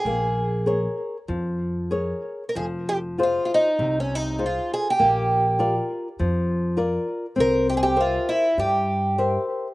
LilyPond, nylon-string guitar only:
\new Staff \with { instrumentName = "Nylon-string guitar" } { \time 4/4 \key bes \dorian \tempo 4 = 99 bes4 <aes' bes' des''>4 f4 <aes' bes' des''>4 | f4 <f' aes' c''>4 c4 <f' aes' c''>4 | bes4 <f' bes' d''>4 f4 <f' bes' d''>4 | c'4 <bes' c'' e''>4 g4 <bes' c'' e''>4 | }